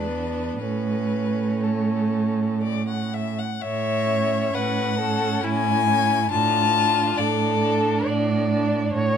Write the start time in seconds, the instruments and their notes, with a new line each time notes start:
Already playing: cello E2, violin D4 B4
0.07 viola B3
0.59 cello A2, viola A3, violin C#4 B4
1.63 violin A4
2.63 violin D5
2.88 violin F#5
3.14 violin E5
3.39 violin F#5
3.62 cello A2, violin C#5 E5
4.09 viola C#4
4.54 cello A2, violin B4 F#5
4.99 viola C#4, violin A4
5.43 cello A2, violin E4 G#5
5.88 viola C#4
6.30 cello A2, viola D4, violin F4 A5
6.75 viola D4
7.17 cello A2, violin A4 D5
7.62 viola D4
8.05 cello A2, violin D5
8.50 viola D4
8.93 cello A2, violin C#5